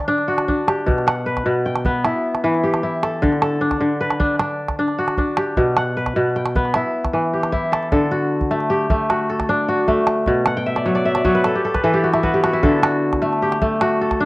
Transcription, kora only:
0.00 0.92 D3 medium
0.00 0.53 B4 medium
0.08 0.48 D4 medium
0.28 1.72 F#4 medium
0.48 2.16 D4 medium
0.68 1.13 G4 medium
0.86 1.45 B2 medium
1.07 1.72 F#5 medium
1.26 2.49 B4 medium
1.46 2.09 B2 medium
1.66 2.59 G5 medium
1.85 3.72 B3 medium
2.05 2.83 E4 medium
2.44 3.27 E3 medium
2.63 4.05 G4 medium
2.83 4.40 E4 medium
3.03 3.41 A4 medium
3.22 3.79 D3 medium
3.42 4.74 A4 medium
3.61 4.19 D4 medium
3.81 5.62 D3 medium
4.01 5.24 B4 medium
4.20 4.39 D4 medium
4.39 4.78 D4 medium
4.79 5.18 D4 medium
4.98 6.42 F#4 medium
5.18 6.86 D4 medium
5.38 5.83 G4 medium
5.57 6.15 B2 medium
5.77 6.42 F#5 medium
5.97 7.20 B4 medium
6.16 6.80 B2 medium
6.36 7.29 G5 medium
6.56 8.42 B3 medium
6.75 7.52 E4 medium
7.13 7.97 E3 medium
7.33 8.17 G4 medium
7.52 9.09 E4 medium
7.72 7.91 A4 medium
7.92 10.26 D3 medium
7.92 9.24 A4 medium
8.11 8.76 F#4 medium
8.51 8.90 A3 medium
8.70 9.74 G4 medium
8.90 9.87 A3 medium
9.10 9.68 F#4 medium
9.30 10.61 A4 medium
9.49 10.92 D4 medium
9.68 10.63 F#4 medium
9.88 11.88 A3 medium
10.27 11.50 B2 medium
10.47 11.43 F#5 medium
10.57 10.92 G5 medium
10.66 11.05 E5 medium
10.76 10.95 D5 medium
10.86 11.24 F#3 medium
10.86 11.21 C#5 medium
10.95 11.15 D5 medium
11.05 12.09 E5 medium
11.15 12.26 D5 medium
11.25 11.50 F#3 medium
11.25 12.39 C#5 medium
11.35 11.74 B4 medium
11.45 11.64 A4 medium
11.55 11.93 G4 medium
11.65 11.84 A4 medium
11.74 12.97 B4 medium
11.84 12.68 E3 medium
11.84 12.63 A4 medium
11.94 12.29 G4 medium
12.04 12.23 F#4 medium
12.13 12.53 E4 medium
12.23 14.10 B3 medium
12.23 12.44 F#4 medium
12.34 12.89 G4 medium
12.44 12.82 F#4 medium
12.53 14.10 E4 medium
12.63 14.25 D3 medium
12.63 13.95 A4 medium
12.83 13.48 F#4 medium
13.22 13.61 A3 medium
13.42 14.25 G4 medium
13.62 14.25 A3 medium
13.81 14.25 F#4 medium
14.01 14.25 A4 medium
14.21 14.25 D4 medium

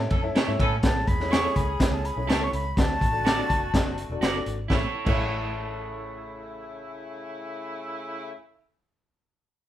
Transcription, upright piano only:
0.23 0.37 C#4 medium
0.23 0.37 E4 medium
0.23 0.38 A4 medium
0.23 0.37 C#5 medium
0.23 0.38 E5 loud
0.47 0.69 C#4 medium
0.47 0.69 E4 medium
0.47 0.69 A4 medium
0.47 0.69 C#5 medium
0.47 0.69 E5 loud
0.83 1.52 A2 medium
0.83 1.05 C#4 medium
0.83 1.05 E4 medium
0.83 1.05 A4 medium
0.83 1.05 C#5 medium
1.20 1.34 C#4 medium
1.20 1.34 E4 medium
1.20 1.34 A4 medium
1.20 1.35 C#5 medium
1.44 1.65 C#4 medium
1.44 1.65 E4 medium
1.44 1.65 A4 medium
1.44 1.65 C#5 medium
1.80 2.02 C#4 medium
1.80 2.02 E4 medium
1.80 2.02 A4 medium
1.80 2.02 C#5 medium
2.17 2.31 C#4 medium
2.17 2.31 E4 medium
2.17 2.31 A4 medium
2.17 2.31 C#5 medium
2.40 2.62 C#4 medium
2.40 2.62 E4 medium
2.40 2.62 A4 medium
2.40 2.62 C#5 medium
2.77 3.46 D3 medium
2.77 2.99 D4 medium
2.77 2.99 F#4 medium
2.77 2.98 A4 medium
2.77 2.99 D5 medium
3.12 3.27 D4 medium
3.12 3.27 F#4 medium
3.12 3.27 A4 medium
3.12 3.27 D5 medium
3.37 3.59 D4 medium
3.37 3.59 F#4 medium
3.37 3.59 A4 medium
3.37 3.59 D5 loud
3.73 3.95 D4 medium
3.73 3.95 F#4 medium
3.73 3.95 A4 medium
3.73 3.95 D5 loud
4.11 4.25 D4 medium
4.11 4.25 F#4 medium
4.11 4.25 A4 medium
4.11 4.25 D5 medium
4.34 4.56 D4 medium
4.34 4.56 F#4 medium
4.34 4.56 A4 medium
4.34 4.56 D5 loud
4.69 4.84 A1 medium
4.69 4.83 C#4 medium
4.69 4.84 E4 medium
4.69 4.84 A4 medium
4.69 4.85 C#5 medium
5.06 8.32 A1 medium
5.06 8.30 C#4 medium
5.06 8.31 E4 medium
5.06 8.32 A4 medium
5.06 8.34 C#5 medium

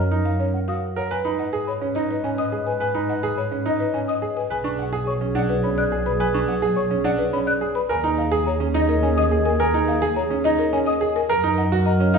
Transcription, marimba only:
0.00 0.16 D#5 medium
0.25 0.44 F5 medium
0.40 0.58 C#5 medium
0.68 0.87 F5 medium
0.97 1.15 C#5 medium
1.11 1.29 G#5 medium
1.39 1.58 F#5 medium
1.68 1.86 C#5 medium
1.95 2.14 D#5 medium
2.11 2.29 B4 medium
2.38 2.57 D#5 medium
2.67 2.85 B4 medium
2.81 2.99 G#5 medium
3.10 3.28 F#5 medium
3.38 3.56 C#5 medium
3.66 3.84 D#5 medium
3.80 3.98 B4 medium
4.09 4.27 D#5 medium
4.37 4.55 B4 medium
4.51 4.69 G#5 medium
4.79 4.97 F#5 medium
5.07 5.25 C#5 medium
5.35 5.54 D5 medium
5.49 5.68 B4 medium
5.78 5.96 D5 medium
6.06 6.24 B4 medium
6.20 6.39 G#5 medium
6.48 6.67 F#5 medium
6.76 6.95 C#5 medium
7.05 7.24 D5 loud
7.19 7.37 B4 medium
7.47 7.66 D5 loud
7.75 7.94 B4 medium
7.90 8.09 G#5 loud
8.18 8.37 F5 medium
8.47 8.65 C#5 medium
8.75 8.93 D#5 medium
8.89 9.07 A#4 medium
9.18 9.36 D#5 loud
9.46 9.64 A#4 medium
9.60 9.78 G#5 loud
9.88 10.07 F5 medium
10.16 10.35 C#5 medium
10.44 10.63 D#5 medium
10.59 10.77 A#4 medium
10.86 11.05 D#5 loud
11.16 11.34 A#4 medium
11.29 11.48 A#5 loud
11.58 11.76 F#5 medium
11.86 12.04 D#5 medium
12.14 12.18 F5 loud

